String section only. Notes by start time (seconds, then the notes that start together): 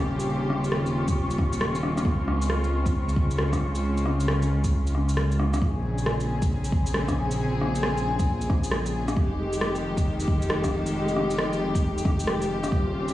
Already playing: C#3 C4 F4 G4
2.06 C#3
5.62 C#3 C4 G#4
9.17 D#3 G#3 G4
12.71 C#3 C4 F4